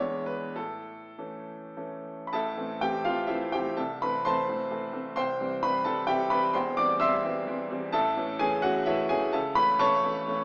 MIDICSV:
0, 0, Header, 1, 2, 480
1, 0, Start_track
1, 0, Key_signature, 0, "minor"
1, 0, Tempo, 590551
1, 452, Time_signature, 3, 2, 24, 8
1, 1895, Tempo, 480769
1, 3335, Tempo, 460476
1, 7175, Tempo, 469484
1, 10227, End_track
2, 0, Start_track
2, 0, Title_t, "Upright piano"
2, 0, Program_c, 0, 0
2, 0, Note_on_c, 0, 40, 54
2, 0, Note_on_c, 0, 52, 44
2, 0, Note_on_c, 0, 56, 46
2, 0, Note_on_c, 0, 62, 46
2, 0, Note_on_c, 0, 73, 88
2, 120, Control_c, 0, 64, 127
2, 211, Note_off_c, 0, 73, 0
2, 213, Note_on_c, 0, 71, 81
2, 428, Note_off_c, 0, 52, 0
2, 429, Note_off_c, 0, 56, 0
2, 430, Note_off_c, 0, 62, 0
2, 445, Note_off_c, 0, 40, 0
2, 453, Note_on_c, 0, 69, 75
2, 454, Note_off_c, 0, 71, 0
2, 456, Note_on_c, 0, 45, 50
2, 471, Control_c, 0, 64, 0
2, 628, Control_c, 0, 64, 127
2, 935, Note_off_c, 0, 45, 0
2, 963, Note_on_c, 0, 52, 42
2, 963, Note_on_c, 0, 57, 42
2, 970, Note_on_c, 0, 61, 43
2, 1405, Note_off_c, 0, 52, 0
2, 1405, Note_off_c, 0, 57, 0
2, 1408, Note_off_c, 0, 61, 0
2, 1438, Note_on_c, 0, 61, 42
2, 1439, Note_on_c, 0, 57, 34
2, 1440, Note_on_c, 0, 52, 40
2, 1674, Note_off_c, 0, 69, 0
2, 1847, Note_on_c, 0, 83, 60
2, 1866, Note_off_c, 0, 57, 0
2, 1866, Note_off_c, 0, 61, 0
2, 1867, Note_off_c, 0, 52, 0
2, 1891, Note_on_c, 0, 81, 95
2, 1892, Note_on_c, 0, 33, 58
2, 1897, Note_off_c, 0, 83, 0
2, 1900, Note_on_c, 0, 45, 66
2, 1906, Note_on_c, 0, 69, 63
2, 1908, Control_c, 0, 64, 0
2, 1911, Note_on_c, 0, 76, 73
2, 2030, Control_c, 0, 64, 127
2, 2128, Note_off_c, 0, 33, 0
2, 2133, Note_off_c, 0, 45, 0
2, 2138, Note_on_c, 0, 57, 46
2, 2140, Note_on_c, 0, 52, 43
2, 2140, Note_on_c, 0, 60, 45
2, 2352, Note_off_c, 0, 69, 0
2, 2355, Note_off_c, 0, 76, 0
2, 2356, Note_off_c, 0, 57, 0
2, 2357, Note_off_c, 0, 52, 0
2, 2357, Note_off_c, 0, 60, 0
2, 2376, Note_on_c, 0, 79, 99
2, 2378, Note_off_c, 0, 81, 0
2, 2382, Note_on_c, 0, 52, 48
2, 2385, Note_on_c, 0, 67, 70
2, 2386, Note_on_c, 0, 60, 55
2, 2389, Note_on_c, 0, 57, 53
2, 2597, Note_off_c, 0, 52, 0
2, 2599, Note_off_c, 0, 60, 0
2, 2600, Note_off_c, 0, 57, 0
2, 2605, Note_off_c, 0, 67, 0
2, 2607, Note_on_c, 0, 77, 91
2, 2615, Note_on_c, 0, 65, 73
2, 2616, Note_on_c, 0, 52, 49
2, 2617, Note_off_c, 0, 79, 0
2, 2621, Note_on_c, 0, 57, 45
2, 2624, Note_on_c, 0, 60, 52
2, 2829, Note_off_c, 0, 52, 0
2, 2830, Note_on_c, 0, 76, 80
2, 2832, Note_off_c, 0, 57, 0
2, 2835, Note_off_c, 0, 60, 0
2, 2838, Note_off_c, 0, 65, 0
2, 2840, Note_on_c, 0, 72, 60
2, 2844, Note_on_c, 0, 52, 51
2, 2845, Note_on_c, 0, 64, 69
2, 2847, Note_on_c, 0, 57, 51
2, 2850, Note_off_c, 0, 77, 0
2, 2851, Note_on_c, 0, 60, 50
2, 3064, Note_off_c, 0, 52, 0
2, 3066, Note_off_c, 0, 57, 0
2, 3069, Note_off_c, 0, 60, 0
2, 3070, Note_off_c, 0, 72, 0
2, 3072, Note_off_c, 0, 64, 0
2, 3082, Note_off_c, 0, 76, 0
2, 3085, Note_on_c, 0, 79, 91
2, 3096, Note_on_c, 0, 67, 65
2, 3105, Note_on_c, 0, 52, 50
2, 3105, Note_on_c, 0, 57, 48
2, 3105, Note_on_c, 0, 60, 53
2, 3315, Note_off_c, 0, 52, 0
2, 3315, Note_off_c, 0, 57, 0
2, 3315, Note_off_c, 0, 60, 0
2, 3318, Note_off_c, 0, 67, 0
2, 3327, Note_on_c, 0, 36, 54
2, 3328, Note_on_c, 0, 81, 76
2, 3329, Note_off_c, 0, 79, 0
2, 3333, Note_on_c, 0, 69, 56
2, 3334, Note_on_c, 0, 76, 59
2, 3340, Note_on_c, 0, 48, 58
2, 3351, Control_c, 0, 64, 0
2, 3517, Control_c, 0, 64, 127
2, 3562, Note_off_c, 0, 69, 0
2, 3562, Note_off_c, 0, 76, 0
2, 3568, Note_off_c, 0, 36, 0
2, 3575, Note_off_c, 0, 48, 0
2, 3576, Note_off_c, 0, 81, 0
2, 3592, Note_on_c, 0, 83, 93
2, 3593, Note_on_c, 0, 71, 70
2, 3603, Note_on_c, 0, 52, 53
2, 3603, Note_on_c, 0, 60, 50
2, 3606, Note_on_c, 0, 57, 43
2, 3810, Note_off_c, 0, 52, 0
2, 3810, Note_off_c, 0, 60, 0
2, 3812, Note_off_c, 0, 57, 0
2, 3812, Note_off_c, 0, 71, 0
2, 3828, Note_off_c, 0, 83, 0
2, 3831, Note_on_c, 0, 84, 103
2, 3842, Note_on_c, 0, 81, 85
2, 3843, Note_on_c, 0, 52, 51
2, 3845, Note_on_c, 0, 57, 54
2, 3845, Note_on_c, 0, 72, 78
2, 3861, Note_on_c, 0, 60, 58
2, 4050, Note_off_c, 0, 52, 0
2, 4051, Note_off_c, 0, 57, 0
2, 4059, Note_off_c, 0, 60, 0
2, 4080, Note_on_c, 0, 52, 53
2, 4083, Note_on_c, 0, 57, 50
2, 4088, Note_on_c, 0, 60, 57
2, 4288, Note_off_c, 0, 52, 0
2, 4290, Note_off_c, 0, 57, 0
2, 4293, Note_off_c, 0, 60, 0
2, 4310, Note_on_c, 0, 52, 47
2, 4315, Note_on_c, 0, 57, 54
2, 4319, Note_on_c, 0, 60, 50
2, 4524, Note_off_c, 0, 52, 0
2, 4528, Note_off_c, 0, 57, 0
2, 4528, Note_off_c, 0, 60, 0
2, 4540, Note_on_c, 0, 52, 48
2, 4544, Note_on_c, 0, 60, 53
2, 4546, Note_on_c, 0, 57, 51
2, 4758, Note_off_c, 0, 81, 0
2, 4759, Note_off_c, 0, 72, 0
2, 4762, Note_off_c, 0, 52, 0
2, 4764, Note_off_c, 0, 60, 0
2, 4764, Note_off_c, 0, 84, 0
2, 4765, Note_off_c, 0, 57, 0
2, 4779, Note_on_c, 0, 84, 101
2, 4780, Note_on_c, 0, 36, 58
2, 4792, Note_on_c, 0, 72, 79
2, 4792, Note_on_c, 0, 79, 76
2, 4794, Note_on_c, 0, 48, 64
2, 4803, Control_c, 0, 64, 0
2, 4927, Control_c, 0, 64, 127
2, 5021, Note_off_c, 0, 36, 0
2, 5028, Note_off_c, 0, 48, 0
2, 5038, Note_on_c, 0, 52, 53
2, 5039, Note_on_c, 0, 55, 52
2, 5043, Note_on_c, 0, 60, 51
2, 5241, Note_off_c, 0, 72, 0
2, 5241, Note_off_c, 0, 79, 0
2, 5253, Note_off_c, 0, 52, 0
2, 5253, Note_off_c, 0, 55, 0
2, 5255, Note_off_c, 0, 60, 0
2, 5267, Note_on_c, 0, 83, 105
2, 5269, Note_off_c, 0, 84, 0
2, 5273, Note_on_c, 0, 71, 81
2, 5274, Note_on_c, 0, 52, 51
2, 5274, Note_on_c, 0, 55, 55
2, 5278, Note_on_c, 0, 60, 55
2, 5487, Note_off_c, 0, 52, 0
2, 5487, Note_off_c, 0, 55, 0
2, 5489, Note_off_c, 0, 60, 0
2, 5493, Note_on_c, 0, 81, 90
2, 5494, Note_off_c, 0, 71, 0
2, 5506, Note_on_c, 0, 69, 77
2, 5508, Note_off_c, 0, 83, 0
2, 5509, Note_on_c, 0, 55, 52
2, 5510, Note_on_c, 0, 52, 49
2, 5517, Note_on_c, 0, 60, 53
2, 5723, Note_off_c, 0, 52, 0
2, 5723, Note_off_c, 0, 55, 0
2, 5727, Note_off_c, 0, 60, 0
2, 5727, Note_on_c, 0, 79, 104
2, 5728, Note_off_c, 0, 69, 0
2, 5739, Note_off_c, 0, 81, 0
2, 5740, Note_on_c, 0, 67, 75
2, 5741, Note_on_c, 0, 52, 55
2, 5743, Note_on_c, 0, 76, 71
2, 5744, Note_on_c, 0, 55, 52
2, 5751, Note_on_c, 0, 60, 59
2, 5959, Note_off_c, 0, 52, 0
2, 5961, Note_off_c, 0, 55, 0
2, 5965, Note_off_c, 0, 60, 0
2, 5966, Note_off_c, 0, 67, 0
2, 5968, Note_off_c, 0, 76, 0
2, 5971, Note_on_c, 0, 83, 100
2, 5974, Note_on_c, 0, 71, 75
2, 5976, Note_off_c, 0, 79, 0
2, 5982, Note_on_c, 0, 52, 55
2, 5985, Note_on_c, 0, 55, 51
2, 5986, Note_on_c, 0, 60, 58
2, 6199, Note_off_c, 0, 52, 0
2, 6200, Note_off_c, 0, 55, 0
2, 6201, Note_off_c, 0, 60, 0
2, 6202, Note_off_c, 0, 71, 0
2, 6214, Note_on_c, 0, 28, 59
2, 6214, Note_on_c, 0, 84, 89
2, 6217, Note_off_c, 0, 83, 0
2, 6230, Note_on_c, 0, 40, 70
2, 6230, Note_on_c, 0, 79, 66
2, 6231, Note_on_c, 0, 72, 64
2, 6241, Control_c, 0, 64, 0
2, 6359, Control_c, 0, 64, 127
2, 6448, Note_off_c, 0, 79, 0
2, 6449, Note_off_c, 0, 28, 0
2, 6449, Note_off_c, 0, 72, 0
2, 6456, Note_off_c, 0, 84, 0
2, 6457, Note_off_c, 0, 40, 0
2, 6458, Note_on_c, 0, 86, 115
2, 6467, Note_on_c, 0, 52, 55
2, 6470, Note_on_c, 0, 74, 86
2, 6476, Note_on_c, 0, 55, 54
2, 6477, Note_on_c, 0, 60, 55
2, 6678, Note_off_c, 0, 52, 0
2, 6683, Note_off_c, 0, 55, 0
2, 6683, Note_off_c, 0, 60, 0
2, 6687, Note_off_c, 0, 74, 0
2, 6694, Note_on_c, 0, 88, 112
2, 6697, Note_off_c, 0, 86, 0
2, 6705, Note_on_c, 0, 52, 60
2, 6705, Note_on_c, 0, 76, 98
2, 6706, Note_on_c, 0, 84, 93
2, 6715, Note_on_c, 0, 55, 59
2, 6715, Note_on_c, 0, 60, 67
2, 6916, Note_off_c, 0, 52, 0
2, 6921, Note_off_c, 0, 55, 0
2, 6921, Note_off_c, 0, 60, 0
2, 6958, Note_on_c, 0, 52, 59
2, 6961, Note_on_c, 0, 55, 60
2, 6966, Note_on_c, 0, 60, 62
2, 7162, Note_off_c, 0, 52, 0
2, 7164, Note_off_c, 0, 55, 0
2, 7167, Note_off_c, 0, 60, 0
2, 7188, Note_on_c, 0, 52, 62
2, 7201, Note_on_c, 0, 55, 55
2, 7203, Note_on_c, 0, 60, 59
2, 7396, Note_off_c, 0, 52, 0
2, 7403, Note_off_c, 0, 55, 0
2, 7404, Note_off_c, 0, 60, 0
2, 7424, Note_on_c, 0, 52, 63
2, 7429, Note_on_c, 0, 55, 59
2, 7431, Note_on_c, 0, 60, 64
2, 7616, Note_off_c, 0, 76, 0
2, 7616, Note_off_c, 0, 84, 0
2, 7636, Note_off_c, 0, 52, 0
2, 7638, Note_off_c, 0, 55, 0
2, 7640, Note_off_c, 0, 60, 0
2, 7651, Note_off_c, 0, 88, 0
2, 7652, Note_on_c, 0, 81, 111
2, 7656, Note_on_c, 0, 33, 67
2, 7663, Note_on_c, 0, 45, 80
2, 7665, Note_on_c, 0, 69, 81
2, 7666, Note_on_c, 0, 76, 85
2, 7668, Control_c, 0, 64, 0
2, 7794, Control_c, 0, 64, 127
2, 7890, Note_off_c, 0, 33, 0
2, 7893, Note_off_c, 0, 45, 0
2, 7904, Note_on_c, 0, 52, 60
2, 7905, Note_on_c, 0, 57, 54
2, 7910, Note_on_c, 0, 61, 59
2, 8111, Note_off_c, 0, 69, 0
2, 8111, Note_off_c, 0, 76, 0
2, 8119, Note_off_c, 0, 52, 0
2, 8119, Note_off_c, 0, 57, 0
2, 8122, Note_off_c, 0, 61, 0
2, 8133, Note_on_c, 0, 80, 122
2, 8135, Note_on_c, 0, 68, 86
2, 8138, Note_off_c, 0, 81, 0
2, 8140, Note_on_c, 0, 52, 63
2, 8146, Note_on_c, 0, 57, 61
2, 8149, Note_on_c, 0, 61, 69
2, 8356, Note_off_c, 0, 52, 0
2, 8360, Note_off_c, 0, 57, 0
2, 8361, Note_off_c, 0, 68, 0
2, 8362, Note_off_c, 0, 61, 0
2, 8364, Note_on_c, 0, 78, 109
2, 8373, Note_on_c, 0, 66, 86
2, 8376, Note_on_c, 0, 52, 65
2, 8377, Note_off_c, 0, 80, 0
2, 8380, Note_on_c, 0, 57, 61
2, 8388, Note_on_c, 0, 61, 70
2, 8596, Note_off_c, 0, 52, 0
2, 8598, Note_off_c, 0, 57, 0
2, 8602, Note_off_c, 0, 66, 0
2, 8603, Note_off_c, 0, 61, 0
2, 8607, Note_on_c, 0, 76, 97
2, 8615, Note_off_c, 0, 78, 0
2, 8618, Note_on_c, 0, 73, 84
2, 8621, Note_on_c, 0, 64, 78
2, 8623, Note_on_c, 0, 52, 60
2, 8626, Note_on_c, 0, 57, 58
2, 8630, Note_on_c, 0, 61, 60
2, 8841, Note_off_c, 0, 52, 0
2, 8843, Note_off_c, 0, 57, 0
2, 8845, Note_off_c, 0, 61, 0
2, 8846, Note_off_c, 0, 73, 0
2, 8846, Note_on_c, 0, 80, 119
2, 8847, Note_off_c, 0, 64, 0
2, 8854, Note_on_c, 0, 68, 87
2, 8856, Note_on_c, 0, 52, 57
2, 8857, Note_off_c, 0, 76, 0
2, 8860, Note_on_c, 0, 57, 58
2, 8867, Note_on_c, 0, 61, 63
2, 9073, Note_off_c, 0, 52, 0
2, 9075, Note_off_c, 0, 57, 0
2, 9079, Note_off_c, 0, 61, 0
2, 9079, Note_off_c, 0, 68, 0
2, 9084, Note_on_c, 0, 81, 89
2, 9091, Note_on_c, 0, 76, 67
2, 9092, Note_off_c, 0, 80, 0
2, 9096, Note_on_c, 0, 37, 77
2, 9101, Note_on_c, 0, 69, 65
2, 9119, Control_c, 0, 64, 0
2, 9248, Control_c, 0, 64, 127
2, 9313, Note_off_c, 0, 76, 0
2, 9318, Note_off_c, 0, 69, 0
2, 9318, Note_on_c, 0, 83, 126
2, 9325, Note_off_c, 0, 37, 0
2, 9326, Note_off_c, 0, 81, 0
2, 9330, Note_on_c, 0, 52, 55
2, 9330, Note_on_c, 0, 71, 87
2, 9332, Note_on_c, 0, 57, 57
2, 9339, Note_on_c, 0, 61, 61
2, 9545, Note_off_c, 0, 52, 0
2, 9546, Note_off_c, 0, 57, 0
2, 9549, Note_off_c, 0, 61, 0
2, 9552, Note_off_c, 0, 71, 0
2, 9563, Note_off_c, 0, 83, 0
2, 9563, Note_on_c, 0, 85, 127
2, 9566, Note_on_c, 0, 81, 101
2, 9571, Note_on_c, 0, 52, 68
2, 9571, Note_on_c, 0, 57, 70
2, 9575, Note_on_c, 0, 73, 105
2, 9578, Note_on_c, 0, 61, 67
2, 9787, Note_off_c, 0, 52, 0
2, 9787, Note_off_c, 0, 57, 0
2, 9791, Note_off_c, 0, 61, 0
2, 9812, Note_on_c, 0, 52, 54
2, 9819, Note_on_c, 0, 61, 67
2, 9824, Note_on_c, 0, 57, 59
2, 10029, Note_off_c, 0, 52, 0
2, 10033, Note_off_c, 0, 61, 0
2, 10035, Note_off_c, 0, 57, 0
2, 10060, Note_on_c, 0, 52, 63
2, 10061, Note_on_c, 0, 57, 62
2, 10076, Note_on_c, 0, 61, 65
2, 10227, Note_off_c, 0, 52, 0
2, 10227, Note_off_c, 0, 57, 0
2, 10227, Note_off_c, 0, 61, 0
2, 10227, Note_off_c, 0, 73, 0
2, 10227, Note_off_c, 0, 81, 0
2, 10227, Note_off_c, 0, 85, 0
2, 10227, End_track
0, 0, End_of_file